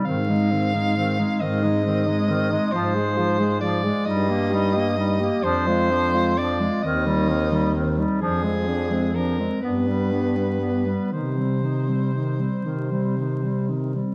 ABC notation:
X:1
M:6/8
L:1/16
Q:3/8=43
K:Cm
V:1 name="Soprano saxophone"
f6 e6 | c4 d2 e6 | c4 d2 e4 z2 | A4 B2 =B6 |
c8- c2 z2 |]
V:2 name="Alto saxophone"
C E C E C E C E C E C E | F A F A F A E G E G E G | D F D F D F C E C E C E | D C D C D C D =B, D B, D B, |
E C E C E C E C E C E C |]
V:3 name="Clarinet" clef=bass
E, A, E, A, E, A, E, A, E, A, E, A, | F, A, F, A, F, A, G, B, G, B, G, B, | F, A, F, A, F, A, E, G, E, G, E, G, | F, A, F, A, F, A, =B, G, B, G, B, G, |
E, G, E, G, E, G, E, G, E, G, E, G, |]
V:4 name="Baritone saxophone" clef=bass
A,,6 A,,6 | A,,6 G,,6 | F,,6 E,,6 | F,,6 G,,6 |
C,6 C,6 |]